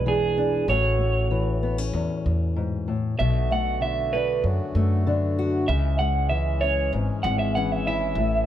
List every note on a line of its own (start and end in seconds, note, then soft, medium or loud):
0.00 0.64 B1 loud
0.00 0.69 E2 medium
0.00 0.65 G#3 medium
0.00 0.68 E4 medium
0.06 0.65 E3 medium
0.06 0.36 D4 medium
0.06 0.68 G#4 medium
0.38 0.65 D4 medium
0.68 1.89 A1 medium
0.68 2.86 A2 medium
0.68 1.30 E3 medium
0.68 1.00 A3 medium
0.68 1.62 C#4 soft
0.68 3.16 F#4 medium
0.68 2.53 C#5 medium
1.01 2.25 A3 soft
1.31 3.15 E3 medium
1.63 1.78 B3 soft
1.78 3.19 C#4 soft
1.93 2.08 E2 medium
1.93 2.56 E2 medium
2.26 3.15 E2 medium
2.56 2.87 G#2 medium
2.88 3.19 A2 medium
3.19 4.40 B1 loud
3.19 3.81 B2 medium
3.19 5.67 D3 medium
3.19 5.67 A3 medium
3.19 5.67 B3 medium
3.19 5.66 F#4 medium
3.19 3.49 E5 medium
3.51 4.75 A3 soft
3.51 3.81 F#5 medium
3.81 5.05 D3 medium
3.81 4.12 E5 medium
4.13 5.06 D4 soft
4.13 4.43 B4 medium
4.44 4.59 F#2 medium
4.44 5.65 F#2 medium
4.75 5.65 F#2 medium
4.75 5.65 A3 medium
5.07 5.69 D3 medium
5.07 5.65 D4 medium
5.39 5.65 F#4 medium
5.68 6.89 C#2 loud
5.68 6.31 C#3 medium
5.68 8.46 E3 medium
5.68 8.16 G#3 medium
5.68 8.16 C#4 medium
5.68 8.16 G#4 medium
5.68 5.98 E5 medium
5.99 7.25 G#3 soft
5.99 6.29 F#5 medium
6.29 7.55 E3 medium
6.29 6.60 E5 medium
6.61 7.56 C#4 medium
6.61 6.92 C#5 medium
6.93 7.08 G#1 medium
6.93 8.15 G#2 medium
7.23 8.14 G#1 loud
7.23 8.15 G#3 medium
7.23 7.39 F#5 medium
7.39 7.55 E5 medium
7.55 8.14 E3 medium
7.55 8.46 C#4 medium
7.55 7.72 F#5 medium
7.72 7.86 E5 medium
7.87 8.46 E4 medium
7.87 8.46 E5 loud
8.15 8.46 A1 medium
8.15 8.46 A2 medium
8.15 8.46 B3 medium
8.15 8.46 E4 medium
8.15 8.46 A4 medium